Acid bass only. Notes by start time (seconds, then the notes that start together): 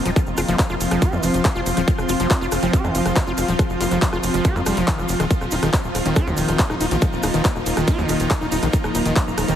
0.06 F3
0.16 F3
0.38 F4
0.48 F3
0.70 F4
0.91 F3
1.02 G4
1.13 D#3
1.23 F3
1.45 D#3
1.56 F4
1.77 F3
1.88 F3
2.09 F4
2.20 F3
2.41 F4
2.63 F3
2.73 G4
2.84 D#3
2.95 F3
3.16 D#3
3.27 F4
3.48 F3
3.59 F3
3.81 F4
3.91 F3
4.13 F4
4.34 F3
4.45 G4
4.56 D#3
4.66 G3
4.77 F3
4.88 D#3
4.98 F3
5.20 D#3
5.31 D#3
5.52 D#4
5.63 D#3
6.06 D#3
6.16 F4
6.27 D3
6.38 D#3
6.59 D3
6.70 D#4
6.81 D#4
6.91 D#3
7.02 D#3
7.23 D#4
7.34 D#3
7.77 D#3
7.88 F4
7.98 D3
8.09 D#3
8.31 D3
8.41 D#4
8.52 D#4
8.63 D#3
8.73 D#3
8.95 D#4
9.06 D#3
9.48 D#3